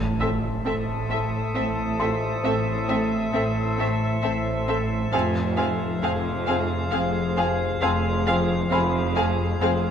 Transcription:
Already playing: double bass section A1, cello section A2, timpani A2, synth texture A4 C5 E5, violin section A5, impact
0.21 marimba A3, viola section C4, violin section A4 E5, felt piano E6
0.65 double bass section A1, cello section A2, marimba A2, viola section C4, violin section A4 E5 D#6
1.09 marimba A2, viola section C4, violin section A4 E5
1.55 double bass section A1, cello section A2, marimba A3, viola section C4, violin section A4 E5
2.00 marimba A2, viola section C4, violin section A4 E5, felt piano C6
2.44 double bass section A1, cello section A2, marimba A2, viola section C4, violin section A4 E5
2.89 marimba A3, viola section C4, violin section A4 E5
3.33 double bass section A1, cello section A2, marimba A2, viola section C4, violin section A4 E5
3.66 violin section E6
3.79 marimba A2, viola section C4, violin section A4 E5
4.22 double bass section A1, cello section A2, marimba A3, viola section C4, violin section A4 E5
4.68 marimba A2, viola section C4, violin section A4 E5
5.12 double bass section F1, cello section F2, marimba F2, viola section C4, synth texture G#4 C5 F5, violin section G#4 F5
5.57 marimba F3, viola section C4, violin section G#4 F5
6.02 double bass section F1, cello section F2, marimba F2, viola section C4, violin section G#4 F5
6.47 marimba F2, viola section C4, violin section G#4 F5
6.91 double bass section F1, cello section F2, marimba F3, viola section C4, violin section G#4 F5
7.37 marimba F2, viola section C4, violin section G#4 F5
7.81 double bass section F1, cello section F2, marimba F2, viola section C4, violin section G#4 F5
8.26 marimba F3, viola section C4, violin section G#4 F5
8.71 double bass section F1, cello section F2, marimba F2, viola section C4, violin section G#4 F5, felt piano B5
9.16 marimba F2, viola section C4, violin section G#4 F5
9.61 double bass section F1, cello section F2, marimba F3, viola section C4, violin section G#4 F5

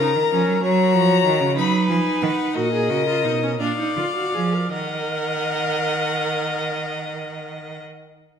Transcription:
Already playing: cello C#3, violin A#4 A#5
0.02 viola D#4
0.16 cello D#3
0.32 cello F3, viola C#4
0.47 cello F#3
0.62 cello F#3, viola F#4, violin C#5 A#5
0.94 cello F3
1.25 cello D#3
1.41 cello C#3
1.57 cello F#3, viola D#4, violin B4 B5
1.89 cello F3, violin G#5
2.22 cello D#3, violin F#5
2.54 cello A#2, viola F#4, violin A#4 D#5
2.73 viola G#4
2.90 cello C#3, viola F#4
3.07 viola F4
3.24 cello B2, viola D#4
3.43 viola C#4
3.60 cello A#2, viola D4, violin D5 F5
3.79 viola D#4
3.96 cello D3, viola F4
4.15 viola F#4
4.34 cello F3, viola G#4
4.53 viola A#4
4.71 cello D#3, viola A#4, violin D#5 F#5

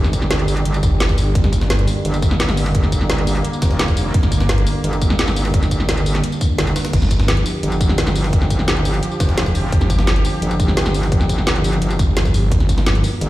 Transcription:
Already playing: wobble bass G1, analog synth pad D3 G3 G4
0.04 snare, tambourine
0.13 kick, closed hi-hat, tambourine
0.22 snare
0.31 snare, closed hi-hat
0.39 closed hi-hat
0.48 closed hi-hat, open hi-hat, tambourine
0.57 closed hi-hat
0.65 wobble bass G1, closed hi-hat
0.74 closed hi-hat, tambourine
0.83 detuned saw bass G1, kick, closed hi-hat, tambourine
1.00 snare, closed hi-hat
1.09 kick, snare, tambourine
1.18 closed hi-hat, open hi-hat, tambourine
1.35 detuned saw bass G1, analog synth pad A#3, kick, closed hi-hat
1.44 snare, closed hi-hat
1.53 kick, closed hi-hat, tambourine
1.61 snare
1.70 snare, closed hi-hat
1.79 closed hi-hat
1.88 closed hi-hat, open hi-hat, tambourine
2.05 wobble bass G1, closed hi-hat
2.14 closed hi-hat, tambourine
2.22 kick, closed hi-hat, tambourine
2.31 snare
2.40 snare, closed hi-hat
2.49 snare, tambourine
2.57 closed hi-hat, open hi-hat, tambourine
2.66 snare
2.75 kick, closed hi-hat
2.83 snare
2.92 kick, closed hi-hat, tambourine
3.01 snare
3.10 snare, closed hi-hat
3.18 closed hi-hat
3.27 closed hi-hat, open hi-hat, tambourine
3.36 closed hi-hat
3.44 closed hi-hat
3.53 tambourine
3.62 wobble bass F1, kick, snare, closed hi-hat, tambourine
3.71 snare
3.79 snare, closed hi-hat
3.88 kick, snare, tambourine
3.97 closed hi-hat, open hi-hat, tambourine
4.14 detuned saw bass G1, kick, closed hi-hat
4.23 snare, closed hi-hat
4.32 kick, closed hi-hat, tambourine
4.40 snare
4.49 snare, closed hi-hat
4.58 closed hi-hat
4.67 closed hi-hat, open hi-hat, tambourine
4.84 wobble bass G1, closed hi-hat
4.93 closed hi-hat, tambourine
5.02 kick, closed hi-hat, tambourine
5.10 snare
5.19 snare, closed hi-hat
5.28 snare, tambourine
5.36 closed hi-hat, open hi-hat, tambourine
5.45 snare
5.54 kick, closed hi-hat
5.63 snare, closed hi-hat, tambourine
5.71 kick, closed hi-hat, tambourine
5.80 snare
5.89 snare, closed hi-hat
5.97 closed hi-hat, tambourine
6.06 closed hi-hat, open hi-hat, tambourine
6.15 snare, closed hi-hat
6.24 closed hi-hat
6.32 closed hi-hat, tambourine
6.41 kick, closed hi-hat, tambourine
6.58 wobble bass G1, snare, closed hi-hat
6.67 snare, tambourine
6.76 snare, closed hi-hat, open hi-hat, tambourine
6.85 snare, closed hi-hat
6.93 detuned saw bass G1, analog synth pad F3 G4, kick, closed hi-hat, crash
7.02 snare, closed hi-hat
7.11 kick, closed hi-hat, tambourine
7.20 snare
7.28 snare, closed hi-hat
7.37 closed hi-hat
7.46 closed hi-hat, open hi-hat, tambourine
7.63 wobble bass G1, closed hi-hat
7.72 closed hi-hat, tambourine
7.81 kick, closed hi-hat, tambourine
7.89 snare
7.98 snare, closed hi-hat
8.07 snare, tambourine
8.16 closed hi-hat, open hi-hat, tambourine
8.24 snare
8.33 kick, closed hi-hat
8.42 snare
8.50 kick, closed hi-hat, tambourine
8.59 snare
8.68 snare, closed hi-hat
8.77 closed hi-hat
8.85 closed hi-hat, open hi-hat, tambourine
8.94 closed hi-hat
9.03 closed hi-hat
9.11 tambourine
9.20 wobble bass F1, kick, snare, closed hi-hat, tambourine
9.29 snare
9.38 snare, closed hi-hat
9.46 kick, snare, tambourine
9.55 closed hi-hat, open hi-hat, tambourine
9.72 detuned saw bass G1, kick, closed hi-hat
9.81 snare, closed hi-hat
9.90 kick, closed hi-hat, tambourine
9.99 snare
10.07 snare, closed hi-hat
10.16 closed hi-hat
10.25 closed hi-hat, open hi-hat, tambourine
10.42 wobble bass G1, closed hi-hat
10.51 closed hi-hat, tambourine
10.60 kick, closed hi-hat, tambourine
10.68 snare
10.77 snare, closed hi-hat
10.86 snare, tambourine
10.94 closed hi-hat, open hi-hat, tambourine
11.03 snare
11.12 kick, closed hi-hat
11.21 snare, tambourine
11.29 kick, closed hi-hat, tambourine
11.38 snare
11.47 snare, closed hi-hat
11.56 closed hi-hat
11.64 closed hi-hat, open hi-hat, tambourine
11.73 closed hi-hat
11.82 wobble bass G1, closed hi-hat
11.90 closed hi-hat, tambourine
11.99 detuned saw bass G1, kick, closed hi-hat, tambourine
12.17 snare, closed hi-hat
12.25 kick, snare, tambourine
12.34 closed hi-hat, open hi-hat, tambourine
12.52 detuned saw bass G1, analog synth pad A#3, kick, closed hi-hat
12.60 snare, closed hi-hat
12.69 kick, closed hi-hat, tambourine
12.78 snare
12.86 snare, closed hi-hat
12.95 closed hi-hat
13.04 closed hi-hat, open hi-hat, tambourine
13.21 wobble bass G1, closed hi-hat

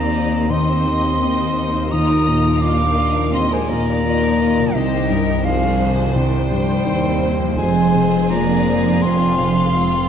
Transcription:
Already playing: felt piano D#2 D#3 C4, double bass section D#2, cello section D#2, harp D#3 G3 G4 C5, french horn section A#3, viola section C4 D#4, violin section C5 D5, flute A#5
0.13 viola section D#4 G4, felt piano C5, violin section D#5
0.31 viola section C4 D#4, violin section C5
0.50 felt piano D#2, french horn section C4, viola section D#4 G4, violin section D#5, flute C6
0.67 viola section C4 D#4, violin section C5
0.85 felt piano D#3, viola section D#4 G4, violin section D#5
1.04 viola section C4 D#4, violin section C5
1.21 felt piano C4, viola section D#4 G4, violin section D#5
1.38 viola section C4 D#4, violin section C5
1.56 viola section D#4 G4, felt piano C5, violin section D#5
1.73 harp D#3, viola section C4 D#4, violin section C5
1.77 harp A#3
1.81 harp F4
1.86 harp A#4
1.91 felt piano D#2, viola section D#3 F4, french horn section D#4, violin section D#5 A#5, flute D#6
2.09 viola section F3 D#4, violin section A#4
2.26 felt piano A#2, viola section D#3 F4, violin section D#5
2.44 viola section F3 D#4, violin section A#4
2.61 viola section D#3 F4, french horn section D4, felt piano F4, violin section D#5 F5, flute D6
2.79 viola section F3 D#4, violin section A#4
2.97 viola section D#3 F4, felt piano A#4, violin section D#5
3.14 viola section F3 D#4, violin section A#4
3.32 felt piano D#2, viola section D#3 F4, french horn section C4, violin section D#5, flute C6
3.50 viola section F3 D#4, french horn section G#3, violin section A#4 C5, flute G#5
3.69 felt piano A#2, viola section D#3 F4, french horn section A#3, violin section D5 D#5, flute A#5
3.85 viola section F3 D#4, violin section A#4
4.04 viola section D#3 F4, felt piano F4, violin section D#5
4.22 viola section F3 D#4, violin section A#4
4.39 viola section D#3 F4, felt piano A#4, violin section D#5
4.57 harp C3, viola section F3 D#4, violin section A#4
4.62 harp D#4
4.71 felt piano C2, french horn section D#3, harp C5, flute D#5
4.75 double bass section C2, cello section C2, viola section G3 D#4, violin section G4 C5
5.09 felt piano G2, violin section A#4
5.44 french horn section F3, viola section F3 D4, felt piano D#4, violin section G#4 C5, flute F5
5.80 viola section D#3, felt piano C5
6.14 felt piano C2, viola section D#3, french horn section G3, violin section C5, flute G5
6.51 felt piano G2, viola section F3
6.86 cello section D#2, double bass section D#2, viola section G3 C4, felt piano D#4, violin section C5
7.22 viola section A#3, felt piano C5
7.40 harp F3
7.45 harp C4
7.49 harp G#4
7.54 felt piano F2, french horn section G#3, harp C5, flute G#5
7.58 double bass section F1, cello section F2, viola section G#3 C4, violin section G#4 C5
7.95 felt piano C3, viola section C4
8.30 viola section G#3 D4, french horn section A#3, felt piano F4, violin section D5, flute A#5
8.67 viola section D#4, felt piano C5
9.02 felt piano F2, viola section F3 D4, french horn section C4, violin section F5, flute C6
9.38 felt piano C3
9.74 viola section G#3 C4, felt piano F4, violin section F4

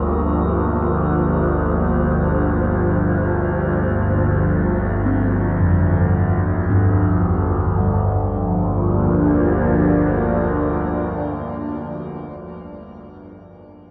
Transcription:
Already playing: synth drone G1 D2, analog synth pad G2 F3 A#3 D4
5.06 kettle gongs C4
5.60 kettle gongs F2
6.70 kettle gongs G2 D4
7.79 synth drone G1 D2, analog synth pad G2, kettle gongs G3
7.97 analog synth pad F3
8.13 analog synth pad A#3
8.28 analog synth pad D4

